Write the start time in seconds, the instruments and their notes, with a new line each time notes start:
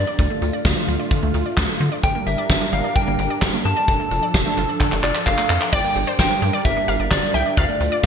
Already playing: analog synth pad G3 D4 A#4, soft synth lead D5
0.07 synth arpeggio sound D5
0.19 analog synth bass D2, synth arpeggio sound D3, analog synth pad D3 A3 F4, kick, closed hi-hat
0.30 synth arpeggio sound A3
0.42 analog synth bass D2, synth arpeggio sound F4, closed hi-hat
0.53 synth arpeggio sound D5
0.65 analog synth bass D2, synth arpeggio sound D3, kick, snare, closed hi-hat
0.76 synth arpeggio sound A3
0.88 analog synth bass D2, synth arpeggio sound F4, closed hi-hat
1.00 synth arpeggio sound D5
1.11 synth arpeggio sound D3, kick, closed hi-hat
1.23 analog synth bass D2, synth arpeggio sound A3
1.34 analog synth bass D2, synth arpeggio sound F4, closed hi-hat
1.46 synth arpeggio sound D5
1.57 analog synth bass D2, synth arpeggio sound D3, kick, snare, clap, closed hi-hat
1.69 synth arpeggio sound A3
1.80 analog synth bass D3, synth arpeggio sound F4, closed hi-hat
1.92 synth arpeggio sound D5
2.03 analog synth bass G1, synth arpeggio sound D3, analog synth pad G3 D4 A#4, soft synth lead G5, kick, closed hi-hat
2.15 synth arpeggio sound A#3
2.26 analog synth bass G1, synth arpeggio sound G4, soft synth lead E5, closed hi-hat
2.38 synth arpeggio sound D5
2.50 analog synth bass G1, synth arpeggio sound D3, kick, snare, closed hi-hat
2.61 synth arpeggio sound A#3
2.73 analog synth bass G1, synth arpeggio sound G4, soft synth lead F5, open hi-hat
2.84 synth arpeggio sound D5
2.96 synth arpeggio sound D3, soft synth lead G5, kick, closed hi-hat
3.07 analog synth bass G1, synth arpeggio sound A#3
3.19 analog synth bass G1, synth arpeggio sound G4, closed hi-hat
3.30 synth arpeggio sound D5
3.42 analog synth bass G1, synth arpeggio sound D3, kick, snare, clap, closed hi-hat
3.53 synth arpeggio sound A#3
3.65 analog synth bass G2, synth arpeggio sound G4, soft synth lead A5, closed hi-hat
3.77 synth arpeggio sound D5
3.88 analog synth bass F1, synth arpeggio sound D3, analog synth pad F3 D4 A4, kick, closed hi-hat
4.00 synth arpeggio sound A3
4.11 analog synth bass F1, synth arpeggio sound F4, closed hi-hat
4.23 synth arpeggio sound D5
4.34 analog synth bass F1, synth arpeggio sound D3, kick, snare, closed hi-hat
4.46 synth arpeggio sound A3
4.57 analog synth bass F1, synth arpeggio sound F4, closed hi-hat
4.69 synth arpeggio sound D5
4.80 synth arpeggio sound D3, kick, clap
4.92 analog synth bass F1, synth arpeggio sound A3, clap
5.03 analog synth bass F1, synth arpeggio sound F4, soft synth lead D5, clap
5.15 synth arpeggio sound D5, clap
5.26 analog synth bass F1, synth arpeggio sound D3, soft synth lead F5, kick, clap
5.38 synth arpeggio sound A3, clap
5.50 analog synth bass F2, synth arpeggio sound F4, clap
5.61 synth arpeggio sound D5, clap
5.73 analog synth bass G1, synth arpeggio sound D3, analog synth pad G3 D4 A#4, synth pluck D5, soft synth lead G5, kick, crash
5.84 synth arpeggio sound A#3
5.96 analog synth bass G1, synth arpeggio sound G4, closed hi-hat
6.07 synth pluck C5, synth arpeggio sound D5
6.19 analog synth bass G1, synth arpeggio sound D3, synth pluck C5, soft synth lead G5, kick, snare, closed hi-hat
6.31 synth arpeggio sound A#3
6.42 analog synth bass G2, synth arpeggio sound G4, closed hi-hat
6.53 synth pluck D5, synth arpeggio sound D5
6.65 analog synth bass G1, soft synth lead E5, kick, closed hi-hat
6.77 synth arpeggio sound A#3
6.88 analog synth bass G1, synth arpeggio sound G4, synth pluck F5, closed hi-hat
7.00 analog synth bass G1, synth arpeggio sound D5
7.11 analog synth bass G1, synth arpeggio sound D3, soft synth lead D5, kick, snare, clap, closed hi-hat
7.23 synth arpeggio sound A#3
7.34 analog synth bass C2, synth arpeggio sound G4, soft synth lead E5, synth pluck G5, closed hi-hat
7.46 synth arpeggio sound D5
7.57 analog synth bass D2, synth arpeggio sound D3, analog synth pad D3 A3 F4, soft synth lead D5, synth pluck F5, kick, closed hi-hat
7.69 synth arpeggio sound A3
7.80 analog synth bass D2, synth arpeggio sound F4, closed hi-hat
7.92 synth arpeggio sound D5, synth pluck D5